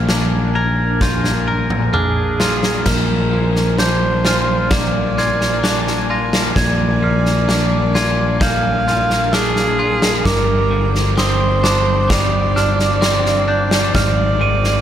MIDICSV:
0, 0, Header, 1, 7, 480
1, 0, Start_track
1, 0, Tempo, 924499
1, 1489, Time_signature, 4, 2, 24, 8
1, 7690, End_track
2, 0, Start_track
2, 0, Title_t, "Glockenspiel"
2, 0, Program_c, 0, 9
2, 0, Note_on_c, 0, 89, 53
2, 286, Note_off_c, 0, 89, 0
2, 286, Note_on_c, 0, 92, 54
2, 525, Note_on_c, 0, 91, 51
2, 527, Note_off_c, 0, 92, 0
2, 1005, Note_on_c, 0, 89, 63
2, 1006, Note_off_c, 0, 91, 0
2, 1482, Note_off_c, 0, 89, 0
2, 1488, Note_on_c, 0, 89, 55
2, 1969, Note_off_c, 0, 89, 0
2, 1969, Note_on_c, 0, 91, 59
2, 2209, Note_off_c, 0, 91, 0
2, 2209, Note_on_c, 0, 89, 53
2, 2689, Note_off_c, 0, 89, 0
2, 2691, Note_on_c, 0, 92, 52
2, 3170, Note_off_c, 0, 92, 0
2, 3171, Note_on_c, 0, 94, 54
2, 3409, Note_on_c, 0, 92, 62
2, 3410, Note_off_c, 0, 94, 0
2, 3649, Note_off_c, 0, 92, 0
2, 3654, Note_on_c, 0, 89, 53
2, 4130, Note_on_c, 0, 92, 54
2, 4131, Note_off_c, 0, 89, 0
2, 4368, Note_on_c, 0, 91, 60
2, 4369, Note_off_c, 0, 92, 0
2, 4847, Note_on_c, 0, 89, 62
2, 4848, Note_off_c, 0, 91, 0
2, 5325, Note_on_c, 0, 86, 68
2, 5327, Note_off_c, 0, 89, 0
2, 5803, Note_on_c, 0, 87, 55
2, 5806, Note_off_c, 0, 86, 0
2, 6043, Note_on_c, 0, 86, 61
2, 6045, Note_off_c, 0, 87, 0
2, 6523, Note_on_c, 0, 89, 62
2, 6524, Note_off_c, 0, 86, 0
2, 7001, Note_on_c, 0, 91, 55
2, 7003, Note_off_c, 0, 89, 0
2, 7242, Note_off_c, 0, 91, 0
2, 7243, Note_on_c, 0, 89, 65
2, 7483, Note_off_c, 0, 89, 0
2, 7484, Note_on_c, 0, 99, 68
2, 7690, Note_off_c, 0, 99, 0
2, 7690, End_track
3, 0, Start_track
3, 0, Title_t, "Alto saxophone"
3, 0, Program_c, 1, 65
3, 1004, Note_on_c, 1, 68, 58
3, 1480, Note_on_c, 1, 70, 60
3, 1488, Note_off_c, 1, 68, 0
3, 1964, Note_on_c, 1, 72, 75
3, 1972, Note_off_c, 1, 70, 0
3, 2444, Note_on_c, 1, 74, 76
3, 2452, Note_off_c, 1, 72, 0
3, 3266, Note_off_c, 1, 74, 0
3, 3406, Note_on_c, 1, 74, 70
3, 4372, Note_on_c, 1, 77, 85
3, 4379, Note_off_c, 1, 74, 0
3, 4850, Note_on_c, 1, 68, 83
3, 4858, Note_off_c, 1, 77, 0
3, 5326, Note_on_c, 1, 70, 79
3, 5334, Note_off_c, 1, 68, 0
3, 5666, Note_off_c, 1, 70, 0
3, 5809, Note_on_c, 1, 72, 82
3, 6284, Note_on_c, 1, 74, 82
3, 6292, Note_off_c, 1, 72, 0
3, 7239, Note_off_c, 1, 74, 0
3, 7243, Note_on_c, 1, 74, 83
3, 7690, Note_off_c, 1, 74, 0
3, 7690, End_track
4, 0, Start_track
4, 0, Title_t, "Ambient pad"
4, 0, Program_c, 2, 92
4, 0, Note_on_c, 2, 62, 64
4, 0, Note_on_c, 2, 70, 61
4, 0, Note_on_c, 2, 80, 77
4, 1467, Note_off_c, 2, 80, 0
4, 1468, Note_off_c, 2, 62, 0
4, 1469, Note_off_c, 2, 70, 0
4, 1494, Note_on_c, 2, 70, 60
4, 1495, Note_on_c, 2, 62, 62
4, 1497, Note_on_c, 2, 80, 70
4, 5310, Note_off_c, 2, 70, 0
4, 5311, Note_off_c, 2, 80, 0
4, 5321, Note_on_c, 2, 72, 67
4, 5323, Note_on_c, 2, 79, 71
4, 6274, Note_off_c, 2, 79, 0
4, 6280, Note_on_c, 2, 77, 75
4, 7222, Note_off_c, 2, 72, 0
4, 7227, Note_off_c, 2, 62, 0
4, 7231, Note_off_c, 2, 77, 0
4, 7242, Note_on_c, 2, 68, 69
4, 7242, Note_on_c, 2, 72, 64
4, 7245, Note_on_c, 2, 82, 73
4, 7690, Note_off_c, 2, 68, 0
4, 7690, Note_off_c, 2, 72, 0
4, 7690, Note_off_c, 2, 82, 0
4, 7690, End_track
5, 0, Start_track
5, 0, Title_t, "Clean electric guitar"
5, 0, Program_c, 3, 27
5, 0, Note_on_c, 3, 46, 51
5, 0, Note_on_c, 3, 58, 42
5, 48, Note_on_c, 3, 62, 42
5, 288, Note_on_c, 3, 70, 52
5, 529, Note_on_c, 3, 65, 49
5, 760, Note_off_c, 3, 70, 0
5, 766, Note_on_c, 3, 70, 47
5, 769, Note_off_c, 3, 46, 0
5, 1000, Note_off_c, 3, 62, 0
5, 1006, Note_on_c, 3, 62, 51
5, 1009, Note_off_c, 3, 58, 0
5, 1242, Note_off_c, 3, 65, 0
5, 1248, Note_on_c, 3, 65, 54
5, 1487, Note_off_c, 3, 62, 0
5, 1488, Note_off_c, 3, 65, 0
5, 1488, Note_off_c, 3, 70, 0
5, 1490, Note_on_c, 3, 46, 53
5, 1729, Note_on_c, 3, 53, 46
5, 1969, Note_on_c, 3, 62, 41
5, 2209, Note_on_c, 3, 65, 52
5, 2449, Note_on_c, 3, 58, 50
5, 2683, Note_off_c, 3, 65, 0
5, 2689, Note_off_c, 3, 46, 0
5, 2689, Note_on_c, 3, 65, 47
5, 2926, Note_off_c, 3, 62, 0
5, 2928, Note_on_c, 3, 62, 56
5, 2929, Note_off_c, 3, 53, 0
5, 3161, Note_off_c, 3, 65, 0
5, 3167, Note_on_c, 3, 65, 53
5, 3408, Note_on_c, 3, 46, 56
5, 3647, Note_on_c, 3, 53, 44
5, 3649, Note_off_c, 3, 58, 0
5, 3884, Note_off_c, 3, 62, 0
5, 3886, Note_on_c, 3, 62, 42
5, 4122, Note_off_c, 3, 65, 0
5, 4128, Note_on_c, 3, 65, 52
5, 4370, Note_on_c, 3, 58, 56
5, 4602, Note_off_c, 3, 65, 0
5, 4608, Note_off_c, 3, 46, 0
5, 4609, Note_on_c, 3, 65, 44
5, 4842, Note_off_c, 3, 62, 0
5, 4847, Note_off_c, 3, 53, 0
5, 4848, Note_on_c, 3, 62, 52
5, 5077, Note_off_c, 3, 65, 0
5, 5084, Note_on_c, 3, 65, 56
5, 5324, Note_on_c, 3, 43, 58
5, 5325, Note_off_c, 3, 65, 0
5, 5328, Note_off_c, 3, 58, 0
5, 5328, Note_off_c, 3, 62, 0
5, 5560, Note_on_c, 3, 50, 52
5, 5801, Note_on_c, 3, 60, 52
5, 6040, Note_on_c, 3, 62, 61
5, 6281, Note_on_c, 3, 55, 55
5, 6515, Note_off_c, 3, 62, 0
5, 6521, Note_on_c, 3, 62, 52
5, 6524, Note_off_c, 3, 43, 0
5, 6755, Note_off_c, 3, 60, 0
5, 6757, Note_on_c, 3, 60, 53
5, 6761, Note_off_c, 3, 50, 0
5, 6992, Note_off_c, 3, 62, 0
5, 6998, Note_on_c, 3, 62, 59
5, 7241, Note_off_c, 3, 55, 0
5, 7241, Note_off_c, 3, 62, 0
5, 7241, Note_on_c, 3, 44, 61
5, 7481, Note_on_c, 3, 51, 54
5, 7690, Note_off_c, 3, 44, 0
5, 7690, Note_off_c, 3, 51, 0
5, 7690, Note_off_c, 3, 60, 0
5, 7690, End_track
6, 0, Start_track
6, 0, Title_t, "Picked electric bass"
6, 0, Program_c, 4, 34
6, 0, Note_on_c, 4, 34, 51
6, 1467, Note_off_c, 4, 34, 0
6, 1486, Note_on_c, 4, 34, 46
6, 3387, Note_off_c, 4, 34, 0
6, 3406, Note_on_c, 4, 34, 54
6, 5305, Note_off_c, 4, 34, 0
6, 5324, Note_on_c, 4, 31, 61
6, 7221, Note_off_c, 4, 31, 0
6, 7242, Note_on_c, 4, 32, 60
6, 7690, Note_off_c, 4, 32, 0
6, 7690, End_track
7, 0, Start_track
7, 0, Title_t, "Drums"
7, 44, Note_on_c, 9, 38, 63
7, 96, Note_off_c, 9, 38, 0
7, 524, Note_on_c, 9, 38, 47
7, 525, Note_on_c, 9, 36, 78
7, 576, Note_off_c, 9, 38, 0
7, 577, Note_off_c, 9, 36, 0
7, 645, Note_on_c, 9, 38, 35
7, 697, Note_off_c, 9, 38, 0
7, 884, Note_on_c, 9, 47, 51
7, 936, Note_off_c, 9, 47, 0
7, 1005, Note_on_c, 9, 45, 50
7, 1057, Note_off_c, 9, 45, 0
7, 1245, Note_on_c, 9, 38, 60
7, 1297, Note_off_c, 9, 38, 0
7, 1366, Note_on_c, 9, 38, 51
7, 1418, Note_off_c, 9, 38, 0
7, 1484, Note_on_c, 9, 38, 75
7, 1484, Note_on_c, 9, 49, 54
7, 1485, Note_on_c, 9, 36, 67
7, 1536, Note_off_c, 9, 38, 0
7, 1536, Note_off_c, 9, 49, 0
7, 1537, Note_off_c, 9, 36, 0
7, 1847, Note_on_c, 9, 38, 22
7, 1899, Note_off_c, 9, 38, 0
7, 1965, Note_on_c, 9, 38, 61
7, 2017, Note_off_c, 9, 38, 0
7, 2205, Note_on_c, 9, 38, 55
7, 2257, Note_off_c, 9, 38, 0
7, 2444, Note_on_c, 9, 38, 84
7, 2446, Note_on_c, 9, 36, 92
7, 2496, Note_off_c, 9, 38, 0
7, 2498, Note_off_c, 9, 36, 0
7, 2688, Note_on_c, 9, 38, 23
7, 2740, Note_off_c, 9, 38, 0
7, 2808, Note_on_c, 9, 38, 27
7, 2860, Note_off_c, 9, 38, 0
7, 2927, Note_on_c, 9, 38, 65
7, 2979, Note_off_c, 9, 38, 0
7, 3049, Note_on_c, 9, 38, 25
7, 3101, Note_off_c, 9, 38, 0
7, 3287, Note_on_c, 9, 38, 66
7, 3339, Note_off_c, 9, 38, 0
7, 3406, Note_on_c, 9, 36, 71
7, 3407, Note_on_c, 9, 38, 69
7, 3458, Note_off_c, 9, 36, 0
7, 3459, Note_off_c, 9, 38, 0
7, 3767, Note_on_c, 9, 38, 23
7, 3819, Note_off_c, 9, 38, 0
7, 3888, Note_on_c, 9, 38, 70
7, 3940, Note_off_c, 9, 38, 0
7, 4128, Note_on_c, 9, 38, 56
7, 4180, Note_off_c, 9, 38, 0
7, 4366, Note_on_c, 9, 36, 88
7, 4366, Note_on_c, 9, 38, 89
7, 4418, Note_off_c, 9, 36, 0
7, 4418, Note_off_c, 9, 38, 0
7, 4607, Note_on_c, 9, 38, 23
7, 4659, Note_off_c, 9, 38, 0
7, 4725, Note_on_c, 9, 38, 28
7, 4777, Note_off_c, 9, 38, 0
7, 4843, Note_on_c, 9, 38, 63
7, 4895, Note_off_c, 9, 38, 0
7, 4964, Note_on_c, 9, 38, 29
7, 5016, Note_off_c, 9, 38, 0
7, 5204, Note_on_c, 9, 38, 64
7, 5256, Note_off_c, 9, 38, 0
7, 5324, Note_on_c, 9, 36, 75
7, 5325, Note_on_c, 9, 38, 81
7, 5376, Note_off_c, 9, 36, 0
7, 5377, Note_off_c, 9, 38, 0
7, 5685, Note_on_c, 9, 38, 26
7, 5737, Note_off_c, 9, 38, 0
7, 5802, Note_on_c, 9, 38, 68
7, 5854, Note_off_c, 9, 38, 0
7, 6043, Note_on_c, 9, 38, 61
7, 6094, Note_off_c, 9, 38, 0
7, 6282, Note_on_c, 9, 38, 96
7, 6283, Note_on_c, 9, 36, 99
7, 6334, Note_off_c, 9, 38, 0
7, 6335, Note_off_c, 9, 36, 0
7, 6522, Note_on_c, 9, 38, 26
7, 6574, Note_off_c, 9, 38, 0
7, 6643, Note_on_c, 9, 38, 28
7, 6695, Note_off_c, 9, 38, 0
7, 6761, Note_on_c, 9, 38, 63
7, 6813, Note_off_c, 9, 38, 0
7, 6883, Note_on_c, 9, 38, 26
7, 6935, Note_off_c, 9, 38, 0
7, 7120, Note_on_c, 9, 38, 60
7, 7172, Note_off_c, 9, 38, 0
7, 7241, Note_on_c, 9, 36, 81
7, 7242, Note_on_c, 9, 38, 72
7, 7293, Note_off_c, 9, 36, 0
7, 7294, Note_off_c, 9, 38, 0
7, 7601, Note_on_c, 9, 38, 25
7, 7653, Note_off_c, 9, 38, 0
7, 7690, End_track
0, 0, End_of_file